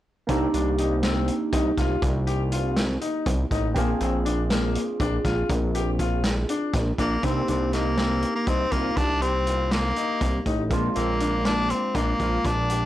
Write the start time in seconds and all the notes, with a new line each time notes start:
0.27 C2 A#3 C4 D4 D#4 G4, kick, closed hi-hat
0.54 C2 D4, closed hi-hat
0.78 D#4, closed hi-hat
1.03 C4, snare, closed hi-hat
1.28 closed hi-hat
1.52 C2 D#4, kick, closed hi-hat
1.77 C2 F4, kick, snare, closed hi-hat
2.02 C2, kick, closed hi-hat
2.27 G4, closed hi-hat
2.52 F4, closed hi-hat
2.77 snare, closed hi-hat
3.01 D#4, closed hi-hat
3.26 C2, kick, closed hi-hat
3.51 A1 D#4, kick, closed hi-hat
3.74 A#1 A#3 C4 D4 F4 G#4, kick, closed hi-hat
4.00 A#1 C4, closed hi-hat
4.25 D4, closed hi-hat
4.50 A#3, snare, closed hi-hat
4.75 closed hi-hat
5.00 A#1 D4, kick, closed hi-hat
5.24 A#1 F4, kick, snare, closed hi-hat
5.50 A#1, kick, closed hi-hat
5.75 G4, closed hi-hat
5.99 F4, kick, closed hi-hat
6.24 snare, closed hi-hat
6.49 D4, closed hi-hat
6.73 A#1, kick, snare, closed hi-hat
6.98 A#1 A#3 D4, kick, closed hi-hat
7.22 C2 A#3 C4 D4 D#4 G4, kick, closed hi-hat
7.48 C2 C4 D4, closed hi-hat
7.73 A#3 D#4, snare, closed hi-hat
7.97 C4, snare, closed hi-hat
8.22 closed hi-hat
8.36 A#3
8.47 C2 C4 D#4, kick, closed hi-hat
8.72 C2 A#3 F4, kick, closed hi-hat
8.97 C2 D4, kick, closed hi-hat
9.22 C4 G4, closed hi-hat
9.47 F4, closed hi-hat
9.71 A#3, snare, closed hi-hat
9.96 D#4, closed hi-hat
10.21 C2, kick, closed hi-hat
10.46 A1 D#4, kick, closed hi-hat
10.69 A#1 G#3 A#3 C4 D4 F4, kick, closed hi-hat
10.96 A#1 A#3 C4, closed hi-hat
11.20 D4, closed hi-hat
11.45 A#3 D4, snare, closed hi-hat
11.70 C4, closed hi-hat
11.95 A#1 A#3 D4, kick, closed hi-hat
12.20 A#1 F4, kick, closed hi-hat
12.45 A#1 D4, kick, closed hi-hat
12.70 G4, closed hi-hat